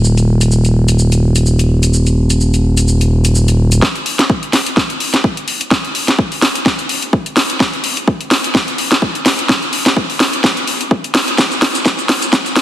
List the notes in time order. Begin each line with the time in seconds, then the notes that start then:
Already playing: D#1
0.04 shaker
0.17 closed hi-hat, shaker
0.41 closed hi-hat, shaker
0.52 shaker
0.65 closed hi-hat, shaker
0.88 closed hi-hat, shaker
0.99 shaker
1.12 closed hi-hat, shaker
1.36 closed hi-hat, shaker
1.46 shaker
1.59 closed hi-hat, shaker
1.83 closed hi-hat, shaker
1.93 shaker
2.07 closed hi-hat, shaker
2.30 closed hi-hat, shaker
2.41 shaker
2.54 closed hi-hat, shaker
2.77 closed hi-hat, shaker
2.88 shaker
3.01 closed hi-hat, shaker
3.25 closed hi-hat, shaker
3.35 shaker
3.48 closed hi-hat, shaker
3.72 closed hi-hat, shaker
3.82 kick, snare
3.95 closed hi-hat
4.06 open hi-hat
4.19 snare, closed hi-hat
4.30 kick
4.43 closed hi-hat
4.53 snare, open hi-hat
4.66 closed hi-hat
4.77 kick, snare
4.90 closed hi-hat
5.00 open hi-hat
5.14 snare, closed hi-hat
5.24 kick
5.37 closed hi-hat
5.48 open hi-hat
5.61 closed hi-hat
5.71 kick, snare
5.85 closed hi-hat
5.95 open hi-hat
6.08 snare, closed hi-hat
6.19 kick
6.32 open hi-hat
6.42 snare, open hi-hat
6.55 closed hi-hat
6.66 kick, snare
6.79 closed hi-hat
6.89 open hi-hat
7.02 closed hi-hat
7.13 kick
7.26 closed hi-hat
7.37 snare, open hi-hat
7.50 closed hi-hat
7.60 kick, snare
7.73 closed hi-hat
7.84 open hi-hat
7.97 closed hi-hat
8.08 kick
8.21 closed hi-hat
8.31 snare, open hi-hat
8.44 closed hi-hat
8.55 kick, snare
8.68 closed hi-hat
8.78 open hi-hat
8.92 snare, closed hi-hat
9.02 kick
9.15 closed hi-hat
9.26 snare, open hi-hat
9.39 closed hi-hat
9.49 kick, snare
9.62 closed hi-hat
9.73 open hi-hat
9.86 snare, closed hi-hat
9.97 kick
10.10 open hi-hat
10.20 snare, open hi-hat
10.33 closed hi-hat
10.44 kick, snare
10.57 closed hi-hat
10.67 open hi-hat
10.81 closed hi-hat
10.91 kick
11.04 closed hi-hat
11.15 snare, open hi-hat
11.28 closed hi-hat
11.38 kick, snare, shaker
11.52 closed hi-hat, shaker
11.62 snare, open hi-hat
11.75 closed hi-hat, shaker
11.86 kick, snare, shaker
11.99 closed hi-hat, shaker
12.09 snare, open hi-hat
12.22 closed hi-hat, shaker
12.33 kick, snare, shaker
12.46 closed hi-hat, shaker
12.56 snare, open hi-hat